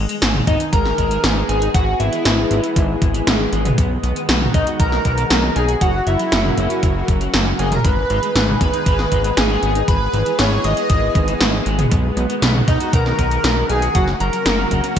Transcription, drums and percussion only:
0.09 closed hi-hat medium
0.22 snare loud
0.22 closed hi-hat loud
0.35 mid tom medium
0.47 kick loud
0.47 closed hi-hat medium
0.60 closed hi-hat medium
0.73 kick loud
0.73 closed hi-hat medium
0.86 snare soft
0.98 kick medium
0.98 closed hi-hat medium
1.11 closed hi-hat medium
1.24 snare loud
1.24 closed hi-hat medium
1.49 closed hi-hat medium
1.62 closed hi-hat medium
1.74 kick loud
1.74 closed hi-hat loud
2.00 closed hi-hat medium
2.13 closed hi-hat medium
2.25 snare loud
2.25 closed hi-hat loud
2.51 closed hi-hat medium
2.64 closed hi-hat medium
2.76 kick loud
2.76 closed hi-hat medium
3.02 kick loud
3.02 closed hi-hat medium
3.14 closed hi-hat medium
3.27 snare loud
3.27 closed hi-hat loud
3.53 closed hi-hat medium
3.65 closed hi-hat medium
3.65 mid tom medium
3.78 kick loud
3.78 closed hi-hat loud
4.04 closed hi-hat medium
4.16 closed hi-hat medium
4.29 snare loud
4.29 closed hi-hat medium
4.42 mid tom medium
4.54 kick loud
4.54 closed hi-hat medium
4.67 closed hi-hat medium
4.80 kick loud
4.80 closed hi-hat medium
4.92 snare soft
5.05 kick medium
5.05 closed hi-hat medium
5.18 closed hi-hat medium
5.30 snare loud
5.30 closed hi-hat loud
5.56 closed hi-hat medium
5.69 closed hi-hat medium
5.81 kick loud
5.81 closed hi-hat medium
6.07 closed hi-hat medium
6.19 closed hi-hat medium
6.32 snare loud
6.32 closed hi-hat medium
6.45 mid tom medium
6.57 closed hi-hat medium
6.70 closed hi-hat medium
6.83 kick loud
6.83 closed hi-hat medium
7.08 kick loud
7.08 closed hi-hat medium
7.21 closed hi-hat medium
7.34 snare loud
7.34 closed hi-hat medium
7.59 closed hi-hat medium
7.72 closed hi-hat medium
7.72 mid tom medium
7.85 kick loud
7.85 closed hi-hat medium
8.10 closed hi-hat medium
8.23 closed hi-hat medium
8.36 snare loud
8.36 closed hi-hat medium
8.48 mid tom medium
8.61 kick loud
8.61 closed hi-hat medium
8.74 closed hi-hat medium
8.86 kick loud
8.86 closed hi-hat medium
8.99 snare soft
9.12 kick medium
9.12 closed hi-hat medium
9.24 closed hi-hat medium
9.37 snare loud
9.37 closed hi-hat medium
9.63 closed hi-hat medium
9.75 closed hi-hat medium
9.88 kick loud
9.88 closed hi-hat medium
10.14 closed hi-hat medium
10.26 closed hi-hat medium
10.39 snare loud
10.39 closed hi-hat medium
10.64 closed hi-hat medium
10.77 closed hi-hat medium
10.90 kick loud
10.90 closed hi-hat medium
11.15 kick loud
11.15 closed hi-hat medium
11.28 closed hi-hat medium
11.41 snare loud
11.41 closed hi-hat medium
11.66 closed hi-hat medium
11.79 closed hi-hat medium
11.79 mid tom medium
11.91 kick loud
11.91 closed hi-hat medium
12.17 closed hi-hat medium
12.30 closed hi-hat medium
12.42 snare loud
12.42 closed hi-hat medium
12.55 mid tom medium
12.68 kick loud
12.68 closed hi-hat medium
12.80 closed hi-hat medium
12.93 kick loud
12.93 closed hi-hat medium
13.06 snare soft
13.19 kick medium
13.19 closed hi-hat medium
13.31 closed hi-hat medium
13.44 snare loud
13.44 closed hi-hat medium
13.70 closed hi-hat medium
13.82 closed hi-hat medium
13.95 kick loud
13.95 closed hi-hat loud
14.08 snare soft
14.20 closed hi-hat medium
14.33 closed hi-hat medium
14.46 snare loud
14.46 closed hi-hat medium
14.71 kick medium
14.71 closed hi-hat medium
14.84 closed hi-hat medium

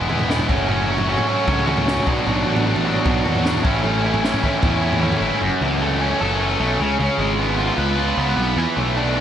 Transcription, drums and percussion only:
0.10 mid tom medium
0.19 floor tom medium
0.19 mid tom medium
0.30 snare medium
0.39 floor tom medium
0.49 kick medium
0.69 floor tom medium
0.98 floor tom medium
1.18 floor tom medium
1.48 kick loud
1.48 floor tom medium
1.67 mid tom medium
1.77 floor tom medium
1.77 mid tom medium
1.88 snare medium
1.97 floor tom medium
2.07 kick medium
2.27 floor tom medium
2.56 floor tom medium
2.76 floor tom medium
3.06 kick loud
3.06 floor tom medium
3.25 mid tom medium
3.35 floor tom medium
3.35 mid tom medium
3.46 snare medium
3.55 floor tom medium
3.65 kick loud
3.84 floor tom medium
4.14 floor tom medium
4.25 snare medium
4.34 floor tom medium
4.44 kick medium
4.44 mid tom medium
4.63 kick loud
4.63 floor tom medium
4.93 floor tom medium
4.93 mid tom medium
5.03 mid tom medium
5.12 floor tom medium

